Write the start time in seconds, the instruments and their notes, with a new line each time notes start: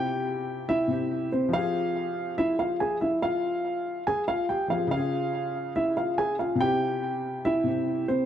Already playing: felt piano C3 C4 E4 G4, grand piano G4 G5
0.69 grand piano E4 E5
0.88 felt piano C3 C4 E4
0.92 felt piano G4
1.32 grand piano C4 C5
1.49 felt piano F3 C4
1.53 grand piano F4 F5, felt piano G4
1.58 felt piano G#4
2.38 grand piano E4 E5
2.59 grand piano F4 F5
2.80 grand piano G#4 G#5
3.01 grand piano E4 E5
3.22 grand piano F4 F5
4.07 grand piano G#4 G#5
4.28 grand piano F4 F5
4.49 grand piano G4 G5
4.68 felt piano F3 C4 G4, grand piano F4 F5
4.73 felt piano G#4
4.87 felt piano C#3 C#4, grand piano F5
4.92 grand piano F4, felt piano F4
4.97 felt piano G#4
5.76 grand piano E4 E5
5.97 grand piano F4 F5
6.18 grand piano G#4 G#5
6.39 grand piano F4 F5
6.55 felt piano C3 C4
6.61 felt piano E4, grand piano G4 G5
6.65 felt piano G4
7.45 grand piano E4 E5
7.64 felt piano C3 C4 E4
7.68 felt piano G4
8.08 grand piano C4 C5